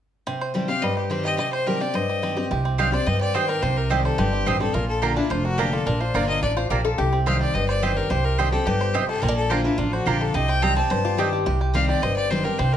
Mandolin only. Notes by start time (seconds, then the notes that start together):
2.78 C4 G4 D#5 G5
3.34 C4 G4 D#5 G5
3.90 C4 G4 D#5 G5
4.47 C4 G4 D#5 G5
5.02 A#3 F4 D5 A#5
5.58 A#3 F4 D5 A#5
6.15 A#3 F4 D5 A#5
6.71 A#3 F4 D5 A#5
7.26 C4 G4 D#5 G5
7.82 C4 G4 D#5 G5
8.38 C4 G4 D#5 G5
8.94 C4 G4 D#5 G5
9.50 A#3 F4 D5 A#5
10.07 A#3 F4 D5 A#5
10.62 C4 G4 D#5 G5
11.19 C4 G4 D#5 G5